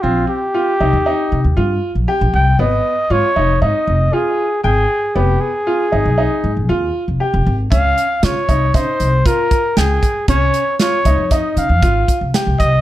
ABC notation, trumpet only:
X:1
M:5/4
L:1/8
Q:1/4=117
K:Ab
V:1 name="Trumpet"
F G6 z2 g | e2 d2 e2 A2 A2 | G A6 z3 | f2 d2 c2 B2 A2 |
d2 d2 e f3 z e |]